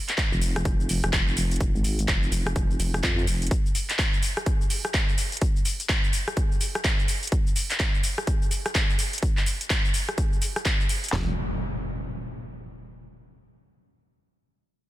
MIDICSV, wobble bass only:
0, 0, Header, 1, 2, 480
1, 0, Start_track
1, 0, Key_signature, -4, "minor"
1, 0, Tempo, 476190
1, 1619, Time_signature, 4, 2, 24, 8
1, 15016, End_track
2, 0, Start_track
2, 0, Title_t, "Wobble bass"
2, 0, Program_c, 0, 39
2, 324, Note_on_c, 0, 29, 94
2, 643, Note_off_c, 0, 29, 0
2, 659, Note_on_c, 0, 29, 95
2, 1022, Note_off_c, 0, 29, 0
2, 1044, Note_on_c, 0, 29, 96
2, 1124, Note_off_c, 0, 29, 0
2, 1139, Note_on_c, 0, 29, 93
2, 1604, Note_off_c, 0, 29, 0
2, 1619, Note_on_c, 0, 29, 97
2, 1742, Note_off_c, 0, 29, 0
2, 1766, Note_on_c, 0, 32, 99
2, 2084, Note_off_c, 0, 32, 0
2, 2099, Note_on_c, 0, 29, 95
2, 2324, Note_off_c, 0, 29, 0
2, 2338, Note_on_c, 0, 29, 101
2, 2564, Note_off_c, 0, 29, 0
2, 2579, Note_on_c, 0, 29, 97
2, 2804, Note_off_c, 0, 29, 0
2, 2820, Note_on_c, 0, 29, 96
2, 3045, Note_off_c, 0, 29, 0
2, 3059, Note_on_c, 0, 41, 92
2, 3284, Note_off_c, 0, 41, 0
2, 3299, Note_on_c, 0, 29, 97
2, 3524, Note_off_c, 0, 29, 0
2, 11220, Note_on_c, 0, 29, 96
2, 11443, Note_off_c, 0, 29, 0
2, 15016, End_track
0, 0, End_of_file